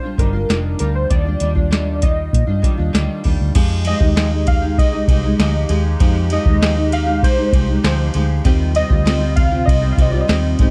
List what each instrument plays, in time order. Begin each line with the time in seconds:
Already playing: fingered electric bass A#1, synth keys C5
0.03 nylon-string guitar G3 D4 F4
0.18 fingered electric bass G1, nylon-string guitar D#3 G3 D4 F4, synth keys A#4, kick, closed hi-hat
0.33 nylon-string guitar G3 D4 F4
0.49 fingered electric bass F1, nylon-string guitar D#3 G3 D4 F4, snare, closed hi-hat
0.79 fingered electric bass D2, nylon-string guitar G3 D4 F4, synth keys A#4, closed hi-hat
0.95 synth keys C5
1.10 fingered electric bass D#2, nylon-string guitar D#3 G3 D4 F4, synth keys D5, kick, closed hi-hat
1.25 nylon-string guitar G3 D4 F4
1.40 fingered electric bass D#2, nylon-string guitar D#3 G3 D4 F4, closed hi-hat
1.55 nylon-string guitar G3 D4 F4, kick
1.71 nylon-string guitar D#3 G3 D4 F4, snare, closed hi-hat
2.01 nylon-string guitar D#3 G3 F4, synth keys D#5, kick, closed hi-hat
2.33 fingered electric bass A#2, kick, closed hi-hat
2.47 fingered electric bass G2, nylon-string guitar G3 D4 F4
2.62 nylon-string guitar D#3 G3 D4 F4, kick, closed hi-hat
2.77 fingered electric bass D#2, nylon-string guitar G3 D4 F4
2.93 fingered electric bass D2, nylon-string guitar D#3 G3 D4 F4, snare, closed hi-hat
3.23 fingered electric bass D#2, nylon-string guitar D#3 G3 D4 F4, kick, open hi-hat
3.40 fingered electric bass D2
3.55 fingered electric bass F2, nylon-string guitar F3 G#3 D#4 G4, analog synth pad G#3 D#4 G4, kick, crash, ride
3.85 nylon-string guitar F3 G#3 D#4 G4, synth keys D#5, ride
4.00 fingered electric bass D#2, nylon-string guitar G#3 D#4 G4, kick
4.16 nylon-string guitar F3 G#3 D#4 G4, snare, ride
4.31 nylon-string guitar G#3 D#4 G4
4.47 synth keys F5, kick, ride
4.62 nylon-string guitar G#3 D#4 G4
4.78 fingered electric bass C2, synth keys D#5, kick, ride
4.92 nylon-string guitar G#3 D#4 G4
5.08 fingered electric bass C2, nylon-string guitar F3 G#3 D#4 G4, kick, ride
5.23 nylon-string guitar G#3 D#4 G4
5.39 fingered electric bass D2, nylon-string guitar F3 G#3 D#4 G4, synth keys D#5, snare, ride
5.69 fingered electric bass D#2, nylon-string guitar F3 G#3 D#4 G4, ride
5.99 fingered electric bass F2, nylon-string guitar F3 G#3 D#4 G4, kick, ride
6.30 nylon-string guitar F3 G#3 D#4 G4, synth keys D#5, ride
6.46 fingered electric bass D#2, nylon-string guitar G#3 D#4 G4, kick
6.61 nylon-string guitar F3 G#3 D#4 G4, snare, ride
6.76 nylon-string guitar G#3 D#4 G4
6.92 synth keys F5, ride
7.06 nylon-string guitar G#3 D#4 G4
7.23 fingered electric bass C2, synth keys C5, kick, ride
7.36 nylon-string guitar G#3 D#4 G4
7.53 fingered electric bass C2, nylon-string guitar F3 G#3 D#4 G4, kick, ride
7.68 nylon-string guitar G#3 D#4 G4
7.83 fingered electric bass D2, nylon-string guitar F3 G#3 D#4 G4, synth keys C5, snare, ride
8.14 fingered electric bass D2, nylon-string guitar F3 G#3 D#4 G4, ride
8.44 fingered electric bass D#2, analog synth pad C3 G3 F4, nylon-string guitar D#3 C4 F4 G4, kick, ride
8.75 nylon-string guitar D#3 C4 F4 G4, synth keys D#5, ride
8.90 fingered electric bass D2, nylon-string guitar C4 F4 G4, kick
9.05 nylon-string guitar D#3 C4 F4 G4, snare, ride
9.20 nylon-string guitar C4 F4 G4
9.36 synth keys F5, kick, ride
9.51 nylon-string guitar C4 F4 G4
9.65 fingered electric bass C2, synth keys D#5, kick, ride
9.81 nylon-string guitar C4 F4 G4
9.92 synth keys F5
9.97 fingered electric bass C2, nylon-string guitar D#3 C4 F4 G4, kick, ride
10.02 synth keys D#5
10.12 nylon-string guitar C4 F4 G4, synth keys D5
10.20 synth keys D#5
10.28 fingered electric bass D#2, nylon-string guitar D#3 C4 F4 G4, synth keys D#5, snare, ride
10.59 fingered electric bass G#1, nylon-string guitar G#3 C4 D#4 G4, analog synth pad G#3 G4, kick, ride